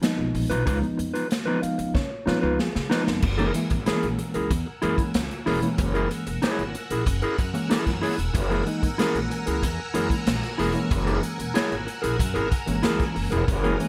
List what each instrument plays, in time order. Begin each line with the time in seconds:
0.01 reed electric piano F3 G#3 B3 D#4, muted clean electric guitar stroke, snare, closed hi-hat
0.18 upright bass B1, muted clean electric guitar stroke
0.35 upright bass A#1, open hi-hat
0.50 upright bass B1, clean electric guitar D#4 F4 B4, closed hi-hat
0.66 upright bass C#2, clean electric guitar D#4 F4 B4, kick, closed hi-hat
0.81 reed electric piano F3 G#3 B3 D#4, muted clean electric guitar stroke, closed hi-hat
0.97 upright bass F2, muted clean electric guitar stroke, closed hi-hat
1.14 clean electric guitar D#4 F4 B4, closed hi-hat
1.29 muted clean electric guitar stroke, snare, closed hi-hat
1.46 reed electric piano F3 G#3 B3 D#4, clean electric guitar D#4 F4 B4
1.62 reed electric piano F5, muted clean electric guitar stroke, muted upright bass stroke, closed hi-hat
1.78 upright bass C#2, muted clean electric guitar stroke, closed hi-hat
1.94 upright bass C#3, reed electric piano C#5, muted clean electric guitar stroke, kick, snare
2.10 muted clean electric guitar stroke
2.26 upright bass C#3, reed electric piano F3 G#3 B3 F4 C#5, clean electric guitar D#4 F4 B4, snare
2.41 upright bass C#2, clean electric guitar D#4 F4 B4, reed electric piano B4
2.59 reed electric piano G#4, snare
2.73 upright bass C#3, muted clean electric guitar stroke, snare
2.90 reed electric piano F3 G#3 B3 D#4 A#4, clean electric guitar D#4 F4 B4, snare
3.06 upright bass F1, muted clean electric guitar stroke, snare
3.22 upright bass F#1, string machine A#4 F#5 G#5 E6, muted clean electric guitar stroke, kick, crash
3.38 reed electric piano E3 G#3 A#3 C#4, clean electric guitar E4 G#4 A#4, closed hi-hat
3.54 reed electric piano E3 G#3 A#3 E4, muted clean electric guitar stroke, closed hi-hat
3.70 upright bass G#1, muted clean electric guitar stroke, kick, closed hi-hat
3.86 reed electric piano E3 G#3 A#3 C#4, clean electric guitar E4 G#4 A#4, muted upright bass stroke, snare, closed hi-hat
4.03 upright bass A#1, closed hi-hat
4.18 muted clean electric guitar stroke, closed hi-hat
4.34 upright bass C#2, clean electric guitar E4 G#4 A#4, closed hi-hat
4.51 upright bass E2, kick, closed hi-hat
4.66 muted clean electric guitar stroke
4.82 upright bass F#2, reed electric piano E3 G#3 A#3 C#4, clean electric guitar E4 G#4 A#4, closed hi-hat
4.98 muted clean electric guitar stroke, kick, closed hi-hat
5.14 upright bass C#2, snare, closed hi-hat
5.30 muted clean electric guitar stroke, closed hi-hat
5.46 upright bass E1, reed electric piano E3 G#3 A#3 C#4, clean electric guitar E4 G#4 A#4, open hi-hat
5.62 reed electric piano E3 G#3 A#3 C#4, muted clean electric guitar stroke, closed hi-hat
5.78 upright bass F#1, muted clean electric guitar stroke, kick, closed hi-hat
5.94 clean electric guitar E4 G#4 A#4, closed hi-hat
6.11 muted clean electric guitar stroke, closed hi-hat
6.27 upright bass E1, muted clean electric guitar stroke, closed hi-hat
6.42 clean electric guitar E4 G#4 C#5, muted upright bass stroke, snare, closed hi-hat
6.59 upright bass G#1, closed hi-hat
6.75 muted clean electric guitar stroke, closed hi-hat
6.91 upright bass A#1, clean electric guitar E4 G#4 A#4, closed hi-hat
7.06 upright bass F#1, muted clean electric guitar stroke, kick, closed hi-hat
7.22 clean electric guitar E4 G#4 A#4, closed hi-hat
7.38 upright bass F#2, muted clean electric guitar stroke, kick, closed hi-hat
7.53 reed electric piano E3 G#3 A#3 C#4, muted clean electric guitar stroke, closed hi-hat
7.70 clean electric guitar E4 G#4 A#4, muted upright bass stroke, snare, closed hi-hat
7.86 upright bass F#2, muted clean electric guitar stroke, kick, snare, closed hi-hat
8.01 clean electric guitar E4 G#4 C#5, open hi-hat
8.18 upright bass E1, muted clean electric guitar stroke, closed hi-hat
8.34 upright bass F#1, muted clean electric guitar stroke, kick, closed hi-hat
8.49 reed electric piano E3 G#3 A#3 E4, clean electric guitar E4 G#4 A#4, closed hi-hat
8.66 reed electric piano E3 G#3 A#3 D#4, muted clean electric guitar stroke, closed hi-hat
8.82 upright bass G#1, muted clean electric guitar stroke, kick, closed hi-hat
8.98 reed electric piano E3 G#3 A#3 C#4, clean electric guitar E4 G#4 A#4, muted upright bass stroke, snare, closed hi-hat
9.14 upright bass A#1, closed hi-hat
9.30 muted clean electric guitar stroke, closed hi-hat
9.46 upright bass C#2, clean electric guitar E4 G#4 A#4, closed hi-hat
9.63 upright bass E2, kick, closed hi-hat
9.78 muted clean electric guitar stroke
9.94 upright bass F#2, reed electric piano E3 G#3 A#3 C#4, clean electric guitar E4 G#4 A#4, closed hi-hat
10.10 muted clean electric guitar stroke, kick, closed hi-hat
10.27 upright bass A#1, snare, closed hi-hat
10.42 muted clean electric guitar stroke, snare, closed hi-hat
10.58 upright bass E1, reed electric piano E3 G#3 A#3 C#4, clean electric guitar E4 G#4 A#4, open hi-hat
10.74 reed electric piano E3 G#3 A#3 C#4, muted clean electric guitar stroke, closed hi-hat
10.91 upright bass F#1, muted clean electric guitar stroke, kick, closed hi-hat
11.06 clean electric guitar E4 G#4 A#4, closed hi-hat
11.22 muted clean electric guitar stroke, closed hi-hat
11.38 upright bass E1, muted clean electric guitar stroke, closed hi-hat
11.54 clean electric guitar E4 G#4 C#5, muted upright bass stroke, snare, closed hi-hat
11.72 upright bass G#1, closed hi-hat
11.87 muted clean electric guitar stroke, closed hi-hat
12.02 upright bass A#1, clean electric guitar E4 G#4 A#4, closed hi-hat
12.19 upright bass F#2, muted clean electric guitar stroke, kick, closed hi-hat
12.34 upright bass G#1, clean electric guitar E4 G#4 A#4, closed hi-hat
12.50 muted clean electric guitar stroke, kick, closed hi-hat
12.66 upright bass G#1, reed electric piano E3 G#3 A#3 C#4, muted clean electric guitar stroke, closed hi-hat
12.83 upright bass C#2, clean electric guitar E4 G#4 A#4, snare, closed hi-hat
13.00 kick, snare, closed hi-hat
13.15 upright bass F#1, muted clean electric guitar stroke, open hi-hat
13.31 upright bass E1, clean electric guitar E4 G#4 A#4, closed hi-hat
13.47 upright bass F#1, string machine D#6, muted clean electric guitar stroke, kick, closed hi-hat
13.63 reed electric piano E3 G#3 A#3 C#4, clean electric guitar E4 G#4 A#4, closed hi-hat
13.79 reed electric piano E3 G#3 A#3 C#4, muted clean electric guitar stroke, closed hi-hat